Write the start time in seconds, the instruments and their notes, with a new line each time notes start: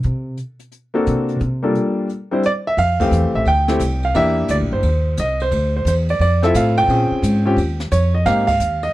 0.03 upright bass C3, closed hi-hat
0.37 closed hi-hat
0.59 closed hi-hat
0.71 closed hi-hat
0.94 grand piano A#3 C4 D4 F#4 A4
1.06 upright bass C3, closed hi-hat
1.28 closed hi-hat
1.40 upright bass C3, closed hi-hat
1.63 grand piano G3 A#3 D4 F4 A4
1.75 closed hi-hat
2.09 closed hi-hat
2.31 grand piano G3 C4 D4 E4 C5
2.43 grand piano D5, closed hi-hat
2.67 grand piano E5
2.77 upright bass F2, grand piano F5, ride
3.00 grand piano E3 A3 C4 G4 F5, kick, crash
3.11 upright bass E2, hi-hat pedal
3.23 upright bass C2
3.35 upright bass A1, grand piano E5
3.45 upright bass D2, grand piano G5, ride
3.68 grand piano A3 C4 E4 G4, snare
3.80 upright bass C2, hi-hat pedal, ride
4.03 grand piano F5, ride
4.14 upright bass E2, grand piano A#3 D4 E4 G4 E5, ride
4.48 upright bass D2, grand piano D5, hi-hat pedal, ride
4.60 upright bass A#1
4.72 upright bass G1, grand piano C5
4.83 upright bass D#2, ride
5.17 upright bass C2, grand piano D#5, hi-hat pedal, ride
5.40 grand piano C5, ride
5.51 upright bass D2, ride
5.77 grand piano C5
5.85 upright bass E2, grand piano C5, hi-hat pedal, ride
6.09 grand piano D5, ride
6.19 upright bass F2, grand piano D5, ride
6.43 grand piano C4 E4 F4 A4 E5, snare
6.54 upright bass A2, grand piano F5, hi-hat pedal, ride
6.77 grand piano G5, ride
6.88 upright bass A#2, grand piano C4 C#4 F4 G#4, ride
7.11 muted upright bass stroke
7.22 upright bass G#2, hi-hat pedal, ride
7.45 grand piano C4 C#4 F4 G4
7.56 upright bass D#2, ride
7.80 snare
7.91 upright bass F2, grand piano C#5, hi-hat pedal, ride
8.15 grand piano D#5
8.25 upright bass G#2, grand piano A#3 C4 D#4 G4 F5, snare, ride
8.47 grand piano F5, kick, crash
8.60 upright bass D#2, hi-hat pedal
8.83 grand piano D#5, ride